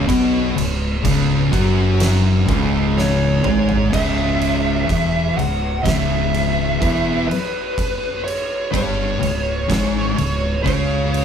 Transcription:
0.07 fingered electric bass B1, distorted electric guitar B2 B3, kick, crash
0.56 fingered electric bass C#1, distorted electric guitar C#2, crash
1.03 fingered electric bass C#1, distorted electric guitar C#2 C#3, kick, crash
1.52 fingered electric bass F#1, distorted electric guitar F#2 F#3, kick, crash
2.00 snare, crash
2.46 fingered electric bass C#1, distorted electric guitar C#2 C#3, kick, crash
2.98 lead electric guitar C#5, snare
3.43 fingered electric bass G#1, distorted electric guitar G#2 G#3, mid tom
3.69 floor tom
3.91 fingered electric bass C#1, distorted electric guitar C#2 C#3, lead electric guitar E5, kick, crash
4.41 crash
4.87 fingered electric bass E1, distorted electric guitar E2 E3, kick, crash
5.37 fingered electric bass C#1, distorted electric guitar C#2, lead electric guitar F#5, crash
5.83 fingered electric bass C#1, distorted electric guitar C#2 C#3, lead electric guitar E5, kick, crash
5.87 snare
6.34 crash
6.79 fingered electric bass E1, distorted electric guitar E2 E3, kick, crash
7.28 lead electric guitar B4, crash
7.78 kick, crash
8.24 lead electric guitar C#5, crash
8.71 fingered electric bass G1, distorted electric guitar G2 G3, lead electric guitar C#5, kick, crash
9.21 fingered electric bass C#1, distorted electric guitar C#2, crash
9.68 fingered electric bass G#1, distorted electric guitar G#2 G#3, kick, snare, crash
10.14 fingered electric bass C#1, distorted electric guitar C#2, crash
10.63 fingered electric bass C#2, distorted electric guitar C#3 C#4, lead electric guitar C#5, kick
10.67 crash
11.14 crash

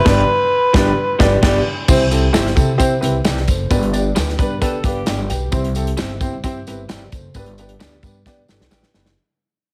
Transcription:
Already playing: harmonica B4
0.05 upright bass G1, upright piano G2 B3 D4 G4 B4 D5, clean electric guitar G3 B3 D4 G4, kick, snare, crash
0.73 upright bass G1, clean electric guitar G3 B3 D4 G4, upright piano B3 D4 G4 B4 D5, kick, snare
1.19 upright bass G1, clean electric guitar G3 B3 D4 G4, upright piano B3 D4 G4 B4 D5, kick, snare
1.42 upright bass G1, clean electric guitar G3 B3 D4 G4, upright piano B3 D4 G4 B4 D5, kick, snare, crash
1.88 upright bass C2, upright piano C3 C4 E4 G4 C5, kick, crash, tambourine
2.11 upright piano C4 E4 G4 A4, closed hi-hat, tambourine
2.33 upright bass G1, clean electric guitar G3 C4 E4 G4, upright piano C4 E4 G4 C5, snare, closed hi-hat, tambourine
2.47 snare
2.55 upright bass C3, upright piano C4 E4 G4 A4, kick, closed hi-hat, tambourine
2.78 upright piano C4 E4 G4 C5, kick, closed hi-hat, tambourine
3.01 upright bass C2, upright piano C4 E4 G4 B4, closed hi-hat, tambourine
3.25 upright bass C2, clean electric guitar G3 C4 E4 G4, upright piano B4 D5, snare, closed hi-hat, tambourine
3.37 snare
3.47 upright bass F#1, upright piano A4 C5, kick, closed hi-hat, tambourine
3.70 upright bass G1, upright piano G2 B3 D4 G4 B4, kick, closed hi-hat, tambourine
3.83 closed hi-hat
3.93 upright piano B3 D4 G4 D5, closed hi-hat, tambourine
4.15 upright bass D2, clean electric guitar G3 B3 D4 G4, upright piano B3 D4 G4 B4, snare, closed hi-hat, tambourine
4.29 snare
4.39 upright bass G2, upright piano B3 D4 G4 B4, clean electric guitar B4, kick, closed hi-hat, tambourine
4.61 upright piano B3 D4 G4 B4, clean electric guitar A4, kick, closed hi-hat, tambourine
4.74 muted upright bass stroke
4.84 upright bass G1, upright piano B3 D4 G4 B4 F5, clean electric guitar G4, kick, closed hi-hat, tambourine
5.06 upright bass G1, clean electric guitar G3 B3 D4 G4, upright piano D5 G5, snare, closed hi-hat, tambourine
5.29 upright bass B1, upright piano G4 B4 G5, closed hi-hat, tambourine
5.52 upright bass C2, upright piano C3 C4 E4 G4 C5, kick, closed hi-hat, tambourine
5.64 closed hi-hat
5.75 upright piano C4 E4 G4 A4, closed hi-hat, tambourine
5.87 closed hi-hat
5.97 clean electric guitar G3 C4 E4 G4, upright piano C4 E4 G4 C5, snare, closed hi-hat, tambourine
6.21 upright piano C4 E4 G4 C5, kick, closed hi-hat, tambourine
6.33 upright bass G2
6.44 upright piano C4 E4 G4 C5, kick, closed hi-hat, tambourine
6.67 upright bass G1, upright piano C4 E4 G4 B4, closed hi-hat, tambourine
6.89 upright bass G1, clean electric guitar G3 C4 E4 G4, upright piano B4 D5, snare, closed hi-hat, tambourine
7.12 upright bass F#1, upright piano A4 C5, kick, closed hi-hat, tambourine
7.34 upright bass G1, upright piano G2 B3 D4 G4 B4, kick, closed hi-hat, tambourine
7.46 closed hi-hat
7.58 upright piano B3 D4 G4 B4, closed hi-hat, tambourine
7.69 closed hi-hat
7.80 upright bass D2, clean electric guitar G3 B3 D4 G4, upright piano B3 D4 G4 D5, snare, closed hi-hat, tambourine
8.03 upright bass G2, upright piano B3 D4 G4 B4, kick, closed hi-hat, tambourine
8.26 upright piano B3 D4 G4 D5, kick, snare, tambourine
8.37 upright bass G1
8.48 upright bass G1, upright piano B3 D4 G4 A4, snare, tambourine
8.60 upright bass B1, snare
8.71 upright bass A1, clean electric guitar G3 B3 D4 G4, upright piano B3 D4 G4 B4, snare, tambourine
8.83 snare
8.94 upright bass F#1, upright piano B3 D4 G4 B4, snare, tambourine
9.06 snare

